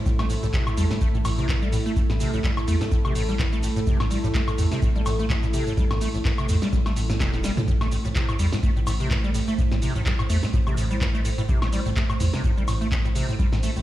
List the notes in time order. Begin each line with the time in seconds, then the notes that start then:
Already playing: A3 E4
0.06 A1 A2 A4, kick, cabasa
0.19 A3, snare, cabasa, high woodblock
0.30 A2, open hi-hat, cabasa
0.43 A1 A2, cabasa
0.54 C3, kick, clap, cabasa
0.67 A2, cabasa, high woodblock
0.77 E2 G3, open hi-hat, cabasa
0.91 A2, snare, cabasa
1.01 A3, kick, cabasa
1.14 A1 A2, cabasa
1.25 A2, open hi-hat, cabasa, high woodblock
1.38 C3, cabasa
1.49 A1 A2, kick, clap, cabasa
1.62 G3, cabasa
1.73 A2, open hi-hat, cabasa
1.86 A3, cabasa
1.96 A1 A2, kick, cabasa
2.10 A2, snare, cabasa
2.20 C3, open hi-hat, cabasa
2.33 A1 A2, cabasa
2.44 G3, kick, clap, cabasa
2.57 A2, cabasa, high woodblock
2.68 E2 A3, open hi-hat, cabasa
2.81 A2, snare, cabasa
2.92 A2, kick, cabasa
3.05 A1 C3, cabasa, high woodblock
3.15 A2, open hi-hat, cabasa
3.29 G3, cabasa
3.39 A1 A2, kick, clap, cabasa
3.53 A3, cabasa
3.63 A2, open hi-hat, cabasa
3.76 A2, cabasa
3.87 A1 C3, kick, cabasa
4.00 A2, snare, cabasa, high woodblock
4.11 G3, open hi-hat, cabasa
4.24 A1 A2, cabasa
4.35 A3, kick, clap, cabasa
4.48 A2, cabasa, high woodblock
4.58 E2 A2, open hi-hat, cabasa
4.72 C3, snare, cabasa
4.82 A2, kick, cabasa
4.95 A1 G3, cabasa
5.06 A2, open hi-hat, cabasa, high woodblock
5.19 A3, cabasa
5.30 A1 A2, kick, clap, cabasa
5.43 A2, cabasa
5.54 C3, open hi-hat, cabasa
5.67 A2, cabasa
5.77 A1 G3, kick, cabasa
5.91 A2, snare, cabasa, high woodblock
6.01 A3, open hi-hat, cabasa
6.14 A1 A2, cabasa
6.25 A2, kick, clap, cabasa
6.38 C3, cabasa, high woodblock
6.49 E2 A2, open hi-hat, cabasa
6.62 G3, snare, cabasa
6.73 A2, kick, high tom, cabasa
6.86 A1 A3, snare, cabasa, high woodblock
6.96 A2, open hi-hat, cabasa
7.10 A2, snare, cabasa
7.20 E1 C3, kick, snare, clap, cabasa
7.33 A2, snare, cabasa
7.44 G3, snare, open hi-hat, cabasa
7.57 A2, mid tom, cabasa
7.68 A1 A2 C5, kick, cabasa
7.81 A3, snare, cabasa, high woodblock
7.92 A2, open hi-hat, cabasa
8.05 A1 A2, cabasa
8.15 C3, kick, clap, cabasa
8.29 A2, cabasa, high woodblock
8.39 E2 G3, open hi-hat, cabasa
8.52 A2, snare, cabasa
8.63 A3, kick, cabasa
8.76 A1 A2, cabasa
8.87 A2, open hi-hat, cabasa, high woodblock
9.00 C3, cabasa
9.11 A1 A2, kick, clap, cabasa
9.24 G3, cabasa
9.34 A2, open hi-hat, cabasa
9.48 A3, cabasa
9.58 A1 A2, kick, cabasa
9.71 A2, snare, cabasa
9.82 C3, open hi-hat, cabasa
9.95 A1 A2, cabasa
10.06 G3, kick, clap, cabasa
10.19 A2, cabasa, high woodblock
10.30 E2 A3, open hi-hat, cabasa
10.43 A2, snare, cabasa
10.54 A2, kick, cabasa
10.67 A1 C3, cabasa, high woodblock
10.77 A2, open hi-hat, cabasa
10.91 G3, cabasa
11.01 A1 A2, kick, clap, cabasa
11.14 A3, cabasa
11.25 A2, open hi-hat, cabasa
11.38 A2, cabasa
11.49 A1 C3, kick, cabasa
11.62 A2, snare, cabasa, high woodblock
11.73 G3, open hi-hat, cabasa
11.86 A1 A2, cabasa
11.96 A3, kick, clap, cabasa
12.10 A2, cabasa, high woodblock
12.20 E2 A2, open hi-hat, cabasa
12.33 C3, snare, cabasa
12.44 A2, kick, cabasa
12.57 A1 G3, cabasa
12.68 A2, open hi-hat, cabasa, high woodblock
12.81 A3, cabasa
12.92 A1 A2, kick, clap, cabasa
13.05 A2, cabasa
13.15 C3, open hi-hat, cabasa
13.29 A2, cabasa
13.39 A1 G3, kick, cabasa
13.52 A2, snare, cabasa
13.63 A3, open hi-hat, cabasa
13.76 A1 A2, cabasa